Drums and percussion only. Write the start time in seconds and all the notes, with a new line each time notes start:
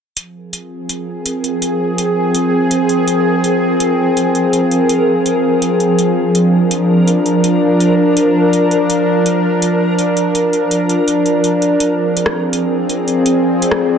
0.17 closed hi-hat
0.53 closed hi-hat
0.89 closed hi-hat
1.26 closed hi-hat
1.44 closed hi-hat
1.62 closed hi-hat
1.98 closed hi-hat
2.35 closed hi-hat
2.71 closed hi-hat
2.89 closed hi-hat
3.08 closed hi-hat
3.44 closed hi-hat
3.80 closed hi-hat
4.17 closed hi-hat
4.35 closed hi-hat
4.53 closed hi-hat
4.71 closed hi-hat
4.89 closed hi-hat
5.26 closed hi-hat
5.62 closed hi-hat
5.80 closed hi-hat
5.99 closed hi-hat
6.35 closed hi-hat
6.71 closed hi-hat
7.08 closed hi-hat
7.26 closed hi-hat
7.44 closed hi-hat
7.80 closed hi-hat
8.17 closed hi-hat
8.53 closed hi-hat
8.71 closed hi-hat
8.90 closed hi-hat
9.26 closed hi-hat
9.62 closed hi-hat
9.99 closed hi-hat
10.17 closed hi-hat
10.35 closed hi-hat
10.53 closed hi-hat
10.71 closed hi-hat
10.89 closed hi-hat
11.08 closed hi-hat
11.26 closed hi-hat
11.44 closed hi-hat
11.62 closed hi-hat
11.80 closed hi-hat
12.17 closed hi-hat
12.26 cross-stick
12.53 closed hi-hat
12.89 closed hi-hat
13.08 closed hi-hat
13.26 closed hi-hat
13.62 closed hi-hat
13.71 cross-stick